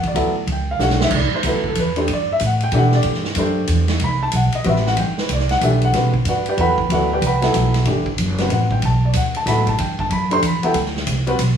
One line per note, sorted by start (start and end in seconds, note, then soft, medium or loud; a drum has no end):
0.03 muted upright bass stroke soft
0.03 kick soft
0.03 ride soft
0.08 0.36 D5 medium
0.14 0.46 D2 medium
0.14 0.33 F#3 medium
0.14 0.34 B3 medium
0.14 0.34 E4 medium
0.14 0.34 A4 medium
0.14 ride medium
0.47 0.79 C#2 medium
0.47 ride medium
0.52 0.70 G5 medium
0.71 0.81 F5 medium
0.79 1.10 B1 medium
0.79 1.12 A3 medium
0.79 1.12 D4 soft
0.79 1.12 G4 soft
0.79 1.13 C#5 medium
0.79 1.01 F#5 medium
0.79 snare soft
0.79 hi-hat pedal medium
0.90 snare medium
1.00 1.13 E5 medium
1.00 snare medium
1.11 1.30 C2 medium
1.11 kick medium
1.11 crash medium
1.16 1.34 D5 medium
1.33 1.45 C5 medium
1.33 muted upright bass stroke soft
1.43 1.75 D2 medium
1.43 1.62 F#3 medium
1.43 1.63 B3 medium
1.43 1.63 E4 soft
1.43 1.63 A4 medium
1.43 hi-hat pedal medium
1.43 ride medium
1.47 1.65 B4 medium
1.64 kick soft
1.68 1.78 A4 medium
1.75 2.07 E2 medium
1.75 hi-hat pedal soft
1.75 ride medium
1.80 1.98 B4 medium
1.96 2.07 A3 medium
1.96 2.07 D4 medium
1.96 2.08 G4 medium
1.96 2.08 C5 medium
1.96 ride soft
2.08 2.40 G2 medium
2.08 ride medium
2.13 2.31 D5 medium
2.32 2.42 E5 medium
2.40 2.71 A2 medium
2.40 hi-hat pedal medium
2.40 ride medium
2.46 2.63 F#5 medium
2.60 2.73 G5 loud
2.60 ride soft
2.72 3.03 B2 medium
2.72 3.21 E3 medium
2.72 3.21 A3 medium
2.72 3.22 D4 medium
2.72 3.22 G4 medium
2.72 ride medium
2.78 2.95 F#5 medium
2.92 3.01 D5 medium
2.92 snare soft
3.03 3.35 G2 medium
3.03 ride medium
3.14 snare soft
3.25 snare soft
3.35 3.67 F#2 medium
3.35 3.85 A3 medium
3.35 3.86 D4 medium
3.35 3.86 G4 medium
3.35 hi-hat pedal medium
3.35 ride medium
3.39 3.86 C5 medium
3.68 3.99 E2 medium
3.68 hi-hat pedal medium
3.68 ride medium
3.88 snare medium
3.88 ride soft
4.00 4.32 C2 medium
4.00 ride medium
4.04 4.22 B5 medium
4.23 4.33 A5 medium
4.32 4.52 B1 medium
4.32 hi-hat pedal medium
4.32 ride medium
4.36 4.54 F#5 medium
4.52 4.66 D#5 medium
4.52 muted upright bass stroke soft
4.52 ride soft
4.64 4.96 A1 medium
4.64 4.97 G3 medium
4.64 4.97 C4 medium
4.64 4.98 F#4 medium
4.64 4.98 B4 medium
4.64 ride medium
4.69 4.87 E5 medium
4.76 snare soft
4.86 4.98 F#5 medium
4.86 snare soft
4.97 5.28 G1 medium
4.97 5.18 G5 medium
4.97 ride medium
5.18 5.30 B4 medium
5.18 snare medium
5.29 5.60 C2 medium
5.29 hi-hat pedal medium
5.29 ride medium
5.33 5.51 D5 medium
5.40 snare soft
5.49 5.62 F#5 medium
5.49 snare soft
5.49 ride soft
5.61 5.92 B1 medium
5.61 6.10 E3 medium
5.61 6.10 A3 medium
5.61 6.11 D4 medium
5.61 6.11 G4 medium
5.61 5.82 E5 medium
5.61 hi-hat pedal medium
5.61 ride medium
5.82 6.13 F#5 medium
5.82 ride soft
5.93 6.25 B2 medium
5.93 6.12 G3 medium
5.93 6.12 C4 soft
5.93 6.12 F#4 medium
5.93 6.13 B4 medium
5.93 snare soft
5.93 ride medium
6.14 kick medium
6.25 6.56 G2 medium
6.25 6.47 F#4 medium
6.25 6.47 D5 medium
6.25 6.47 F#5 medium
6.25 hi-hat pedal soft
6.25 ride medium
6.29 6.47 B4 medium
6.46 6.59 G4 medium
6.46 6.59 B4 medium
6.46 6.59 G5 medium
6.46 ride soft
6.50 6.59 D5 medium
6.58 6.89 E2 medium
6.58 6.76 F#3 medium
6.58 6.76 B3 soft
6.58 6.77 E4 soft
6.58 6.77 A4 medium
6.58 6.92 B4 medium
6.58 6.92 F#5 medium
6.58 7.08 G5 medium
6.58 7.08 B5 medium
6.58 ride medium
6.78 kick medium
6.90 7.21 D2 medium
6.90 7.08 F#3 medium
6.90 7.09 B3 medium
6.90 7.09 E4 medium
6.90 7.09 A4 medium
6.90 7.11 F#5 medium
6.90 ride medium
6.94 7.12 F#4 medium
6.94 7.12 B4 medium
6.94 7.12 D5 medium
7.13 7.24 G4 medium
7.13 7.24 B4 medium
7.13 7.23 D5 medium
7.13 7.23 G5 medium
7.22 7.53 C2 medium
7.22 hi-hat pedal medium
7.22 ride medium
7.27 7.73 B4 medium
7.27 7.73 F#5 medium
7.27 7.73 G5 medium
7.27 7.73 B5 medium
7.41 7.83 F#3 medium
7.41 7.84 B3 medium
7.41 7.84 E4 medium
7.41 7.84 A4 medium
7.41 snare soft
7.41 ride soft
7.54 7.85 B1 medium
7.54 hi-hat pedal medium
7.54 ride medium
7.74 snare soft
7.74 ride soft
7.85 8.17 G1 medium
7.85 8.05 E3 medium
7.85 8.05 A3 medium
7.85 8.05 D4 soft
7.85 8.05 G4 medium
7.85 ride medium
8.06 kick medium
8.18 8.49 F#1 medium
8.18 hi-hat pedal medium
8.18 ride medium
8.38 8.80 G3 medium
8.38 8.80 C4 medium
8.38 8.81 F#4 medium
8.38 8.81 B4 medium
8.38 snare soft
8.38 ride soft
8.50 8.81 A1 medium
8.50 8.71 F#5 medium
8.50 ride medium
8.71 8.83 G5 medium
8.71 kick medium
8.82 9.14 B1 medium
8.82 9.04 A5 medium
8.82 ride medium
9.05 9.15 D5 medium
9.13 9.45 D2 medium
9.13 9.36 F#5 medium
9.13 hi-hat pedal medium
9.13 ride medium
9.35 9.47 A5 medium
9.35 ride soft
9.46 9.77 A2 medium
9.46 9.65 F#3 medium
9.46 9.65 B3 medium
9.46 9.65 E4 medium
9.46 9.66 A4 medium
9.46 9.67 B5 loud
9.46 snare soft
9.46 hi-hat pedal medium
9.46 ride medium
9.67 9.79 A5 medium
9.67 kick medium
9.67 ride soft
9.78 10.09 G2 medium
9.78 9.99 G5 medium
9.78 ride medium
9.99 10.11 A5 medium
9.99 kick medium
10.10 10.41 F#2 medium
10.10 10.31 B5 medium
10.10 ride medium
10.31 10.41 A3 medium
10.31 10.42 D4 medium
10.31 10.42 G4 medium
10.31 10.42 C5 medium
10.31 10.43 C6 loud
10.31 ride soft
10.42 10.61 E2 medium
10.42 hi-hat pedal medium
10.42 ride medium
10.46 10.64 B5 medium
10.63 10.74 F#3 medium
10.63 10.74 B3 medium
10.63 10.74 E4 medium
10.63 10.75 A4 medium
10.63 11.05 G5 medium
10.63 muted upright bass stroke soft
10.63 ride soft
10.74 11.06 D2 medium
10.74 ride medium
10.86 snare soft
10.97 snare soft
11.07 11.38 C2 medium
11.07 hi-hat pedal medium
11.07 ride medium
11.27 11.38 G3 medium
11.27 11.38 C4 medium
11.27 11.38 F#4 medium
11.27 11.38 B4 medium
11.27 ride soft
11.39 11.57 B1 medium
11.39 hi-hat pedal medium
11.39 ride medium